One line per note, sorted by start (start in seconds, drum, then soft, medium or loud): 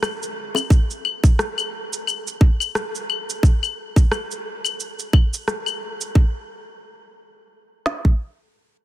0.03 cross-stick medium
0.03 cabasa medium
0.03 claves medium
0.23 cabasa soft
0.55 high bongo medium
0.55 cabasa medium
0.55 claves medium
0.70 kick loud
0.70 cabasa medium
0.91 cabasa soft
1.05 claves medium
1.24 kick loud
1.24 cabasa medium
1.39 cross-stick medium
1.39 cabasa soft
1.58 cabasa soft
1.58 claves medium
1.93 cabasa medium
2.07 cabasa medium
2.07 claves medium
2.28 cabasa soft
2.41 kick loud
2.60 cabasa medium
2.60 claves medium
2.75 cross-stick medium
2.75 cabasa medium
2.95 cabasa soft
3.10 claves medium
3.30 cabasa medium
3.43 kick loud
3.43 cabasa medium
3.63 cabasa soft
3.63 claves medium
3.96 kick medium
3.96 cabasa medium
4.12 cross-stick medium
4.12 cabasa soft
4.12 claves medium
4.31 cabasa soft
4.65 cabasa medium
4.65 claves medium
4.80 cabasa medium
4.99 cabasa soft
5.13 kick loud
5.13 claves medium
5.34 cabasa medium
5.48 cross-stick medium
5.48 cabasa soft
5.66 cabasa soft
5.66 claves medium
6.01 cabasa medium
6.15 kick loud
7.86 snare medium
8.05 kick medium